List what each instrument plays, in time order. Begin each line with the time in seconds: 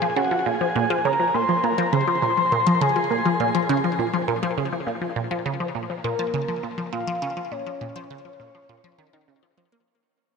Already playing: soft synth lead G#5
0.02 synth arpeggio sound F3
0.16 synth arpeggio sound C#3, soft synth lead F#5
0.31 synth arpeggio sound F3
0.46 synth arpeggio sound A#2, soft synth lead G#5
0.61 synth arpeggio sound F3
0.76 synth arpeggio sound A#2
0.90 synth arpeggio sound F3
1.04 synth arpeggio sound C#3, soft synth lead A#5
1.20 synth arpeggio sound F3
1.34 synth arpeggio sound A#2, soft synth lead C6
1.49 synth arpeggio sound F3
1.63 synth arpeggio sound A#2, soft synth lead A#5
1.78 synth arpeggio sound F3
1.92 synth arpeggio sound C#3, soft synth lead C6
2.07 synth arpeggio sound F3
2.22 synth arpeggio sound A#2
2.37 synth arpeggio sound F3
2.52 synth arpeggio sound A#2
2.67 synth arpeggio sound F3
2.81 synth arpeggio sound C#3, soft synth lead G#5
2.96 synth arpeggio sound F3
3.11 synth arpeggio sound A#2
3.25 synth arpeggio sound F3
3.40 synth arpeggio sound A#2
3.55 synth arpeggio sound F3
3.69 synth arpeggio sound C#3
3.84 synth arpeggio sound F3
3.99 synth arpeggio sound A#2
4.14 synth arpeggio sound F3
4.28 synth arpeggio sound A#2
4.43 synth arpeggio sound F3
4.58 synth arpeggio sound C#3
4.72 synth arpeggio sound F3
4.87 synth arpeggio sound A#2
5.02 synth arpeggio sound F3
5.16 synth arpeggio sound A#2
5.31 synth arpeggio sound F3
5.46 synth arpeggio sound C#3
5.60 synth arpeggio sound F3
5.75 synth arpeggio sound A#2
5.90 synth arpeggio sound F3
6.04 synth arpeggio sound A#2, soft synth lead A#4
6.19 synth arpeggio sound F3
6.34 synth arpeggio sound C#3
6.48 synth arpeggio sound F3
6.63 synth arpeggio sound A#2
6.78 synth arpeggio sound F3
6.93 synth arpeggio sound A#2, soft synth lead F5
7.07 synth arpeggio sound F3
7.22 synth arpeggio sound C#3
7.37 synth arpeggio sound F3
7.52 synth arpeggio sound A#2, soft synth lead C#5
7.67 synth arpeggio sound F3
7.81 synth arpeggio sound A#2
7.96 synth arpeggio sound F3
8.10 synth arpeggio sound C#3
8.25 synth arpeggio sound F3
8.40 synth arpeggio sound A#2
8.55 synth arpeggio sound F3
8.69 synth arpeggio sound A#2
8.84 synth arpeggio sound F3
8.98 synth arpeggio sound D#3
9.13 synth arpeggio sound D#3
9.28 synth arpeggio sound C#3
9.43 synth arpeggio sound F3
9.58 synth arpeggio sound F3
9.72 synth arpeggio sound A#3